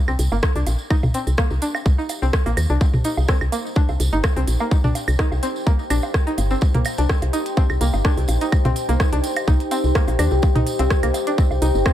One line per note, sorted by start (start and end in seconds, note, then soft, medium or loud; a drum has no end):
0.00 11.93 D#4 medium
0.00 11.93 G4 medium
0.00 11.93 G5 medium
0.04 0.16 C2 medium
0.04 0.11 C4 medium
0.04 11.93 C5 medium
0.04 tambourine soft
0.04 high woodblock medium
0.19 0.28 C2 loud
0.19 open hi-hat medium
0.19 tambourine loud
0.32 0.40 G1 medium
0.32 0.35 A#3 medium
0.32 tambourine soft
0.32 low woodblock soft
0.42 kick loud
0.42 cross-stick loud
0.42 tambourine medium
0.55 0.63 C2 loud
0.55 0.58 D4 medium
0.55 open hi-hat soft
0.55 tambourine soft
0.67 0.76 A#1 medium
0.67 open hi-hat medium
0.67 tambourine medium
0.67 low woodblock soft
0.79 tambourine soft
0.90 0.94 D#4 medium
0.90 kick loud
0.90 tambourine soft
0.90 high woodblock medium
1.03 1.11 C2 loud
1.03 mid tom medium
1.03 tambourine soft
1.03 low woodblock soft
1.14 1.18 C4 medium
1.14 open hi-hat medium
1.14 tambourine loud
1.27 1.35 C2 medium
1.27 open hi-hat soft
1.27 tambourine soft
1.37 1.42 A#3 medium
1.37 kick loud
1.37 cross-stick loud
1.37 tambourine soft
1.37 low woodblock soft
1.50 1.59 C2 medium
1.50 tambourine soft
1.62 1.64 D4 medium
1.62 open hi-hat medium
1.62 tambourine loud
1.75 tambourine soft
1.75 high woodblock medium
1.75 low woodblock soft
1.86 1.95 C2 medium
1.86 kick loud
1.86 tambourine medium
1.98 2.01 D#4 medium
1.98 tambourine soft
2.09 open hi-hat medium
2.09 tambourine medium
2.09 low woodblock soft
2.22 2.30 C2 medium
2.22 2.25 C4 medium
2.22 tambourine soft
2.33 kick loud
2.33 cross-stick loud
2.33 tambourine medium
2.46 2.54 A#1 medium
2.46 2.49 A#3 medium
2.46 open hi-hat soft
2.46 tambourine soft
2.46 low woodblock soft
2.57 2.66 D#2 loud
2.57 open hi-hat medium
2.57 tambourine medium
2.57 high woodblock medium
2.70 2.78 C2 loud
2.70 2.72 D4 medium
2.70 tambourine soft
2.81 kick loud
2.81 tambourine medium
2.81 low woodblock soft
2.94 3.01 C2 medium
2.94 mid tom medium
2.94 tambourine soft
3.04 3.08 D#4 medium
3.04 open hi-hat medium
3.04 tambourine loud
3.17 3.25 C2 medium
3.17 tambourine soft
3.17 low woodblock soft
3.28 3.32 C4 medium
3.28 kick loud
3.28 cross-stick medium
3.28 tambourine medium
3.41 3.49 C2 medium
3.41 tambourine soft
3.41 high woodblock medium
3.52 3.56 A#3 medium
3.52 open hi-hat medium
3.52 tambourine medium
3.52 low woodblock soft
3.66 tambourine soft
3.75 3.78 D4 medium
3.75 kick loud
3.75 tambourine soft
3.89 3.97 C2 medium
3.89 tambourine soft
3.89 low woodblock soft
4.00 4.09 C2 loud
4.00 open hi-hat medium
4.00 tambourine loud
4.13 4.21 G1 medium
4.13 4.16 D#4 medium
4.13 tambourine soft
4.23 kick loud
4.23 cross-stick loud
4.23 tambourine soft
4.23 high woodblock medium
4.23 low woodblock soft
4.36 4.44 C2 loud
4.36 4.40 C4 medium
4.36 open hi-hat soft
4.36 tambourine soft
4.48 4.57 A#1 medium
4.48 open hi-hat medium
4.48 tambourine loud
4.59 4.63 A#3 medium
4.59 tambourine soft
4.59 low woodblock soft
4.71 kick loud
4.71 tambourine medium
4.84 4.92 C2 loud
4.84 4.86 D4 medium
4.84 mid tom medium
4.84 tambourine soft
4.95 open hi-hat medium
4.95 tambourine loud
4.95 low woodblock soft
5.08 5.16 C2 medium
5.08 open hi-hat soft
5.08 tambourine soft
5.08 high woodblock medium
5.19 5.22 D#4 medium
5.19 kick loud
5.19 cross-stick medium
5.19 tambourine medium
5.32 5.40 C2 medium
5.32 tambourine soft
5.32 low woodblock soft
5.43 5.46 C4 medium
5.43 open hi-hat medium
5.43 tambourine medium
5.56 tambourine soft
5.67 5.70 A#3 medium
5.67 kick loud
5.67 tambourine soft
5.67 low woodblock soft
5.79 tambourine soft
5.90 5.99 A#1 medium
5.90 5.93 D4 medium
5.90 open hi-hat medium
5.90 tambourine loud
5.90 high woodblock medium
6.02 tambourine soft
6.02 low woodblock soft
6.14 kick loud
6.14 cross-stick medium
6.14 tambourine medium
6.27 6.30 D#4 medium
6.27 open hi-hat soft
6.27 tambourine soft
6.38 6.55 G1 medium
6.38 open hi-hat medium
6.38 tambourine medium
6.38 low woodblock soft
6.50 6.54 C4 medium
6.50 tambourine soft
6.61 kick loud
6.61 tambourine medium
6.74 6.82 C2 medium
6.74 6.78 A#3 medium
6.74 closed hi-hat soft
6.74 mid tom medium
6.74 tambourine soft
6.85 open hi-hat medium
6.85 tambourine medium
6.85 high woodblock medium
6.85 low woodblock soft
6.98 7.06 C2 medium
6.98 7.00 D4 medium
6.98 closed hi-hat soft
6.98 tambourine soft
7.09 kick loud
7.09 cross-stick medium
7.09 tambourine soft
7.22 7.30 C2 medium
7.22 closed hi-hat soft
7.22 tambourine soft
7.22 low woodblock soft
7.33 7.37 D#4 medium
7.33 open hi-hat medium
7.33 tambourine medium
7.46 closed hi-hat soft
7.46 tambourine soft
7.57 7.61 C4 medium
7.57 kick loud
7.57 tambourine soft
7.57 low woodblock soft
7.70 7.78 C2 medium
7.70 tambourine soft
7.70 high woodblock medium
7.81 7.90 C2 loud
7.81 7.84 A#3 medium
7.81 open hi-hat medium
7.81 tambourine medium
7.94 8.01 G1 medium
7.94 tambourine soft
7.94 low woodblock soft
8.04 8.07 D4 medium
8.04 kick loud
8.04 cross-stick medium
8.04 tambourine medium
8.17 8.25 C2 loud
8.17 open hi-hat soft
8.17 tambourine soft
8.28 8.38 A#1 medium
8.28 open hi-hat medium
8.28 tambourine medium
8.28 low woodblock soft
8.41 8.44 D#4 medium
8.41 closed hi-hat soft
8.41 tambourine soft
8.52 kick loud
8.52 tambourine soft
8.52 high woodblock medium
8.65 8.73 C2 loud
8.65 8.68 C4 medium
8.65 closed hi-hat soft
8.65 mid tom medium
8.65 tambourine soft
8.65 low woodblock soft
8.76 open hi-hat medium
8.76 tambourine medium
8.89 8.97 C2 medium
8.89 8.92 A#3 medium
8.89 open hi-hat soft
8.89 tambourine soft
9.00 kick loud
9.00 cross-stick medium
9.00 tambourine medium
9.00 low woodblock soft
9.13 9.20 C2 medium
9.13 9.15 D4 medium
9.13 closed hi-hat soft
9.13 tambourine soft
9.24 open hi-hat medium
9.24 tambourine medium
9.36 closed hi-hat soft
9.36 tambourine soft
9.36 high woodblock medium
9.36 low woodblock soft
9.47 9.57 C2 medium
9.47 9.51 D#4 medium
9.47 kick loud
9.47 tambourine soft
9.60 closed hi-hat soft
9.60 tambourine soft
9.71 9.75 C4 medium
9.71 open hi-hat medium
9.71 tambourine medium
9.71 low woodblock soft
9.84 9.92 C2 medium
9.84 tambourine soft
9.95 9.99 A#3 medium
9.95 kick loud
9.95 cross-stick medium
9.95 tambourine medium
10.08 10.16 A#1 medium
10.08 open hi-hat soft
10.08 tambourine soft
10.08 low woodblock soft
10.19 10.28 D#2 loud
10.19 10.21 D4 medium
10.19 open hi-hat medium
10.19 tambourine loud
10.19 high woodblock medium
10.31 10.40 C2 loud
10.31 tambourine soft
10.42 kick loud
10.42 tambourine soft
10.42 low woodblock soft
10.55 10.63 C2 loud
10.55 10.59 D#4 medium
10.55 closed hi-hat soft
10.55 mid tom medium
10.55 tambourine soft
10.67 open hi-hat medium
10.67 tambourine medium
10.79 10.87 C2 medium
10.79 10.82 C4 medium
10.79 closed hi-hat medium
10.79 tambourine soft
10.79 low woodblock soft
10.90 kick loud
10.90 cross-stick medium
10.90 tambourine soft
11.03 11.11 C2 medium
11.03 11.06 A#3 medium
11.03 closed hi-hat medium
11.03 tambourine soft
11.03 high woodblock medium
11.14 open hi-hat medium
11.14 tambourine medium
11.14 low woodblock soft
11.27 11.29 D4 medium
11.27 closed hi-hat soft
11.27 tambourine soft
11.38 kick loud
11.38 tambourine medium
11.51 11.59 C2 medium
11.51 tambourine soft
11.51 low woodblock soft
11.62 11.71 C2 loud
11.62 11.65 D#4 medium
11.62 open hi-hat medium
11.62 tambourine medium
11.75 11.82 G1 medium
11.75 tambourine soft
11.86 11.89 C4 medium
11.86 kick loud
11.86 cross-stick medium
11.86 tambourine soft
11.86 high woodblock medium
11.86 low woodblock soft